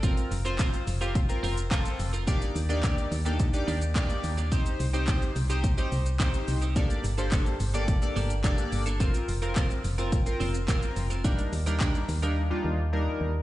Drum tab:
HH |xxoxxxoxxxoxxxox|xxoxxxoxxxoxxxox|xxoxxxoxxxoxxxox|xxoxxxoxxxoxxxox|
SH |xxxxxxxxxxxxxxxx|xxxxxxxxxxxxxxxx|xxxxxxxxxxxxxxxx|xxxxxxxxxxxxxxxx|
CP |----x-------x---|----x-------x---|----x-------x---|----x-------x---|
BD |o---o---o---o---|o---o---o---o---|o---o---o---o---|o---o---o---o---|

HH |xxoxxxoxxxoxxxox|xxoxxxox--------|
SH |xxxxxxxxxxxxxxxx|xxxxxxxx--------|
CP |----x-------x---|----x-----------|
BD |o---o---o---o---|o---o-----------|